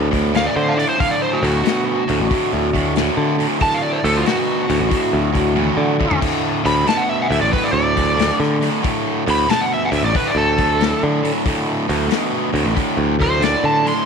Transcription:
Already playing: picked electric bass D2
0.11 overdriven electric guitar D2 A2, kick, open hi-hat
0.34 overdriven electric guitar D2 A2, electric slide guitar F5, snare, open hi-hat
0.46 electric slide guitar D5
0.56 picked electric bass D3, electric slide guitar C5
0.69 electric slide guitar F5
0.76 overdriven electric guitar D2 A2, electric slide guitar D5, open hi-hat
0.89 electric slide guitar C5
0.97 overdriven electric guitar D2 A2, electric slide guitar F5, kick, open hi-hat
1.11 electric slide guitar D5
1.22 electric slide guitar C5
1.33 electric slide guitar F#4
1.43 overdriven electric guitar D2 A2, picked electric bass D2, open hi-hat
1.63 overdriven electric guitar D2 B2, snare, open hi-hat
2.08 overdriven electric guitar D2 A2, picked electric bass D2, open hi-hat
2.20 picked electric bass A1
2.30 overdriven electric guitar D2 A2, kick, open hi-hat
2.53 picked electric bass D2
2.73 overdriven electric guitar D2 A2, kick, open hi-hat
2.96 overdriven electric guitar D2 A2, snare, open hi-hat
3.17 picked electric bass D3
3.39 overdriven electric guitar D2 A2, open hi-hat
3.60 overdriven electric guitar D2 A2, electric slide guitar A5, kick, open hi-hat
3.74 electric slide guitar F5
3.82 electric slide guitar D5
3.92 electric slide guitar C5
4.04 overdriven electric guitar D2 A2, picked electric bass D2, electric slide guitar A4, open hi-hat
4.17 electric slide guitar F4
4.25 overdriven electric guitar D2 B2, electric slide guitar F#4, snare, open hi-hat
4.68 overdriven electric guitar D2 A2, picked electric bass D2, open hi-hat
4.80 picked electric bass A1
4.90 overdriven electric guitar D2 A2, kick, open hi-hat
5.13 picked electric bass D2
5.33 overdriven electric guitar D2 A2, kick, open hi-hat
5.55 overdriven electric guitar D2 A2, high tom
5.77 picked electric bass D3
5.99 overdriven electric guitar D2 A2, kick
6.11 floor tom
6.21 overdriven electric guitar D2 A2, kick, open hi-hat, crash
6.64 overdriven electric guitar D2 A2, picked electric bass D2, electric slide guitar B5, open hi-hat
6.85 overdriven electric guitar D2 B2, electric slide guitar A5, snare, open hi-hat
6.97 electric slide guitar F#5
7.09 electric slide guitar E5
7.22 electric slide guitar F#5
7.29 overdriven electric guitar D2 A2, picked electric bass D2, electric slide guitar E5, open hi-hat
7.41 picked electric bass A1, electric slide guitar D5
7.51 overdriven electric guitar D2 A2, electric slide guitar B4, kick, open hi-hat
7.64 electric slide guitar D5
7.73 picked electric bass D2, electric slide guitar D5
7.95 overdriven electric guitar D2 A2, kick, open hi-hat
8.16 overdriven electric guitar D2 A2, open hi-hat
8.21 snare
8.40 picked electric bass D3, snare
8.61 overdriven electric guitar D2 A2, open hi-hat
8.82 overdriven electric guitar D2 A2, kick, open hi-hat
9.26 overdriven electric guitar D2 A2, picked electric bass D2, open hi-hat
9.30 electric slide guitar B5
9.48 overdriven electric guitar D2 B2, electric slide guitar A5, snare, open hi-hat
9.61 electric slide guitar F#5
9.74 electric slide guitar E5
9.85 electric slide guitar F#5
9.91 overdriven electric guitar D2 A2, picked electric bass D2, open hi-hat
9.96 electric slide guitar E5
10.03 picked electric bass A1, electric slide guitar D5
10.13 overdriven electric guitar D2 A2, electric slide guitar B4, kick, open hi-hat
10.28 electric slide guitar D5
10.35 picked electric bass D2, electric slide guitar A4
10.56 overdriven electric guitar D2 A2, kick, open hi-hat
10.79 overdriven electric guitar D2 A2, snare, open hi-hat
11.03 picked electric bass D3
11.22 overdriven electric guitar D2 A2, open hi-hat
11.45 overdriven electric guitar D2 A2, kick, open hi-hat
11.88 overdriven electric guitar D2 A2, picked electric bass D2, open hi-hat
12.08 overdriven electric guitar D2 B2, snare, open hi-hat
12.53 overdriven electric guitar D2 A2, picked electric bass D2, open hi-hat
12.64 picked electric bass A1
12.74 overdriven electric guitar D2 A2, kick, open hi-hat
12.97 picked electric bass D2
13.19 overdriven electric guitar D2 A2, electric slide guitar C5, kick, open hi-hat
13.40 overdriven electric guitar D2 A2, electric slide guitar D5, snare, open hi-hat
13.64 picked electric bass D3, electric slide guitar A5
13.83 overdriven electric guitar D2 A2, open hi-hat
13.88 electric slide guitar C6

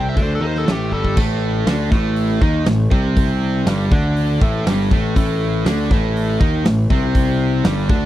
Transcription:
Already playing: picked electric bass C2, distorted electric guitar C3 C4
0.09 lead electric guitar E5
0.16 picked electric bass D2, distorted electric guitar D3 D4, kick, open hi-hat
0.22 lead electric guitar C5
0.35 lead electric guitar A4
0.41 picked electric bass D#2, distorted electric guitar D#3 D#4
0.47 lead electric guitar C5
0.55 lead electric guitar A4, snare
0.66 picked electric bass A1, distorted electric guitar A2 A3, snare, open hi-hat
0.72 lead electric guitar G4
0.91 picked electric bass G1, distorted electric guitar G2 G3, lead electric guitar A4, kick
1.05 kick
1.17 picked electric bass A1, distorted electric guitar A2 A3, kick, crash
1.66 picked electric bass D2, distorted electric guitar D3 D4, snare, open hi-hat
1.91 picked electric bass A1, distorted electric guitar A2 A3, kick, snare
2.16 open hi-hat
2.41 picked electric bass D#2, distorted electric guitar D#3 D#4, kick
2.66 picked electric bass A1, distorted electric guitar A2, snare, open hi-hat
2.91 picked electric bass C2, distorted electric guitar C3 C4, kick
3.17 kick, open hi-hat
3.66 picked electric bass G1, distorted electric guitar G2 G3, snare, open hi-hat
3.91 picked electric bass D2, distorted electric guitar D3 D4, kick
4.16 open hi-hat
4.41 picked electric bass A1, distorted electric guitar A2 A3, kick
4.66 picked electric bass G1, distorted electric guitar G2 G3, snare, open hi-hat
4.91 picked electric bass A1, distorted electric guitar A2 A3, kick
5.16 picked electric bass A1, distorted electric guitar A2 A3, kick, open hi-hat
5.66 picked electric bass D2, distorted electric guitar D3 D4, snare, open hi-hat
5.90 picked electric bass A1, distorted electric guitar A2 A3, kick, snare
6.16 open hi-hat
6.40 picked electric bass D#2, distorted electric guitar D#3 D#4, kick
6.65 picked electric bass A1, distorted electric guitar A2, snare, open hi-hat
6.90 picked electric bass C2, distorted electric guitar C3 C4, kick
7.15 kick, open hi-hat
7.64 picked electric bass G1, distorted electric guitar G2 G3, snare, open hi-hat
7.89 picked electric bass D2, distorted electric guitar D3 D4, kick

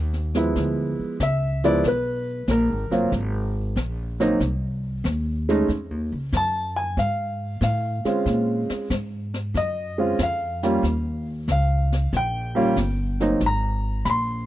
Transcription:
Already playing: upright bass D#2
0.13 snare
0.34 grand piano F3 G#3 B3 E4, snare
0.56 upright bass D2, brush sweep, kick, snare
0.99 muted upright bass stroke
1.20 upright bass C#2, grand piano E5, kick, snare, hi-hat pedal
1.64 grand piano F3 G#3 B3 E4 D5, snare
1.84 upright bass B1, grand piano B4, brush sweep, kick, snare
2.48 upright bass A#1, grand piano A#4, kick, snare, hi-hat pedal
2.69 upright bass G#1
2.90 upright bass F1, grand piano F#3 A#3 C4 F4, snare
3.12 upright bass G#1, brush sweep, kick, snare
3.76 upright bass A#1, kick, snare, hi-hat pedal
4.20 grand piano F#3 A#3 C4 D#4, snare
4.40 upright bass C2, brush sweep, kick, snare
5.04 upright bass D#2, kick, snare, hi-hat pedal
5.49 grand piano G#3 A3 C#4 D#4, snare
5.68 upright bass F2, brush sweep, kick, snare
5.90 upright bass D#2
6.12 upright bass C#2
6.33 upright bass F#2, kick, snare, hi-hat pedal
6.37 grand piano A5
6.76 grand piano G#5
6.97 upright bass G#2, grand piano F5, brush sweep, kick, snare
7.61 upright bass A2, grand piano F5, kick, snare, hi-hat pedal
8.05 grand piano G#3 C4 C#4 F4, muted upright bass stroke, snare
8.26 upright bass A#2, brush sweep, kick, snare
8.70 muted upright bass stroke, snare
8.90 upright bass G#2, kick, snare, hi-hat pedal
9.34 snare
9.54 upright bass F#2, grand piano D#5, brush sweep, kick, snare
9.98 grand piano G#3 C4 C#4 F4
10.19 upright bass F2, kick, snare, hi-hat pedal
10.23 grand piano F5
10.63 grand piano G3 A#3 C#4 F4, snare
10.83 upright bass D#2, brush sweep, kick, snare
11.48 upright bass C#2, grand piano F5, kick, snare, hi-hat pedal
11.92 snare
12.13 upright bass A#1, brush sweep, kick, snare
12.17 grand piano G5
12.55 grand piano G3 A#3 C#4 F4
12.76 upright bass G1, kick, snare, hi-hat pedal
13.20 grand piano F#3 A#3 C4 D#4, snare
13.40 upright bass G#1, brush sweep, kick, snare
13.46 grand piano A#5
14.05 upright bass A#1, grand piano B5, kick, snare, hi-hat pedal
14.10 grand piano C6

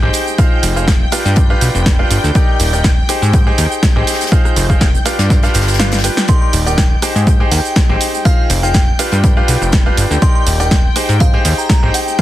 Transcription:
Already playing: analog synth pad G5 G6
0.03 analog synth bass G#1, grand piano D#4 G4 G#4 C5 G5
0.13 closed hi-hat, open hi-hat, shaker
0.28 shaker
0.38 grand piano D#4 F4 G#4 C5 F5, kick, closed hi-hat, shaker
0.63 analog synth bass F1, closed hi-hat, open hi-hat, shaker
0.76 grand piano D#4 F4 G#4 C5 F5, shaker
0.88 kick, snare, closed hi-hat, shaker
1.12 grand piano D4 F4 G4 B4 F5, cross-stick, closed hi-hat, open hi-hat, shaker
1.25 analog synth bass G2, closed hi-hat, shaker
1.36 kick, closed hi-hat, shaker
1.50 grand piano D4 F4 G4 B4 F5
1.61 analog synth bass B1, closed hi-hat, open hi-hat, shaker
1.75 analog synth bass F1, shaker
1.86 kick, snare, closed hi-hat, shaker
1.99 grand piano D4 F4 G4 B4 F5
2.11 analog synth bass G1, closed hi-hat, open hi-hat, shaker
2.24 analog synth bass D2, snare, shaker
2.35 grand piano D#4 G4 A#4 D5 G5, kick, closed hi-hat, shaker
2.59 analog synth bass D#1, closed hi-hat, open hi-hat, shaker
2.73 grand piano D#4 G4 A#4 D5 G5, closed hi-hat, shaker
2.84 kick, snare, closed hi-hat, shaker
3.09 grand piano D#4 G4 G#4 C5 G5, closed hi-hat, open hi-hat, shaker
3.22 analog synth bass G#2, closed hi-hat, shaker
3.33 kick, closed hi-hat, shaker
3.47 grand piano D#4 G4 G#4 C5 G5
3.58 analog synth bass D#2, closed hi-hat, open hi-hat, shaker
3.72 shaker
3.83 kick, snare, closed hi-hat, shaker
3.96 analog synth bass G#1, grand piano D#4 G4 G#4 C5 G5
4.07 snare, closed hi-hat, open hi-hat, shaker
4.14 snare, closed hi-hat
4.21 snare, closed hi-hat, shaker
4.26 snare, closed hi-hat
4.32 grand piano D#4 F4 G#4 C5 F5, kick, closed hi-hat, shaker
4.45 cross-stick, shaker
4.56 analog synth bass F1, closed hi-hat, open hi-hat, shaker
4.70 grand piano D#4 F4 G#4 C5 F5, kick, shaker
4.80 kick, snare, closed hi-hat, shaker
4.95 shaker
5.05 grand piano D4 F4 G4 B4 F5, cross-stick, snare, closed hi-hat, open hi-hat, shaker
5.19 analog synth bass G2, snare, closed hi-hat, shaker
5.30 kick, snare, closed hi-hat, shaker
5.43 grand piano D4 F4 G4 B4 F5, snare, closed hi-hat, shaker
5.54 analog synth bass G1, snare, closed hi-hat, open hi-hat, shaker
5.61 snare, closed hi-hat
5.67 snare, closed hi-hat, shaker
5.74 snare, closed hi-hat
5.79 grand piano D4 F4 G4 B4 F5, snare, shaker
5.92 snare, closed hi-hat, shaker
5.98 snare, closed hi-hat
6.04 grand piano D4 F4 G4 B4 G5, closed hi-hat, open hi-hat, shaker
6.17 snare, shaker
6.28 grand piano D#4 G4 A#4 D5 G5, analog synth pad G5 G6, synth bell C6, kick, closed hi-hat, shaker
6.42 synth bell C6
6.53 analog synth bass D#1, closed hi-hat, open hi-hat, shaker
6.66 grand piano D#4 G4 A#4 D5 G5, synth bell G5, closed hi-hat, shaker
6.78 kick, snare, closed hi-hat, shaker
7.02 grand piano D#4 G4 G#4 C5 G5, cross-stick, closed hi-hat, open hi-hat, shaker
7.16 analog synth bass G#2, closed hi-hat, shaker
7.27 kick, closed hi-hat, shaker
7.40 grand piano D#4 G4 G#4 C5 G5
7.51 analog synth bass D#2, synth bell G5, closed hi-hat, open hi-hat, shaker
7.65 shaker
7.76 kick, snare, closed hi-hat, shaker
7.89 analog synth bass G#1, grand piano D#4 G4 G#4 C5 G5
8.00 closed hi-hat, open hi-hat, shaker
8.14 shaker
8.25 grand piano D#4 F4 G#4 C5 F5, synth bell F5, kick, closed hi-hat, shaker
8.50 analog synth bass F1, closed hi-hat, open hi-hat, shaker
8.63 grand piano D#4 F4 G#4 C5 F5, synth bell G5, shaker
8.74 synth bell G5, kick, snare, closed hi-hat, shaker
8.99 grand piano D4 F4 G4 B4 F5, closed hi-hat, open hi-hat, shaker
9.12 analog synth bass G2, closed hi-hat, shaker
9.24 kick, closed hi-hat, shaker
9.37 grand piano D4 F4 G4 B4 F5
9.48 analog synth bass B1, closed hi-hat, open hi-hat, shaker
9.61 analog synth bass F1, shaker
9.72 kick, snare, closed hi-hat, shaker
9.86 grand piano D4 F4 G4 B4 F5
9.97 analog synth bass G1, closed hi-hat, open hi-hat, shaker
10.10 analog synth bass D2, snare, shaker
10.22 grand piano D#4 G4 A#4 D5 G5, synth bell C6, kick, closed hi-hat, shaker
10.35 synth bell C6
10.47 analog synth bass D#1, closed hi-hat, open hi-hat, shaker
10.60 grand piano D#4 G4 A#4 D5 G5, synth bell G5, closed hi-hat, shaker
10.71 kick, snare, closed hi-hat, shaker
10.96 grand piano D#4 G4 G#4 C5 G5, cross-stick, closed hi-hat, open hi-hat, shaker
11.09 analog synth bass G#2, closed hi-hat, shaker
11.20 synth bell F5, kick, closed hi-hat, shaker
11.34 grand piano D#4 G4 G#4 C5 G5
11.45 analog synth bass D#2, closed hi-hat, open hi-hat, shaker
11.58 synth bell A#5, shaker
11.69 synth bell A#5, kick, snare, closed hi-hat, shaker
11.83 analog synth bass G#1, grand piano D#4 G4 G#4 C5 G5
11.94 synth bell G5, closed hi-hat, open hi-hat, shaker
12.08 shaker
12.19 closed hi-hat

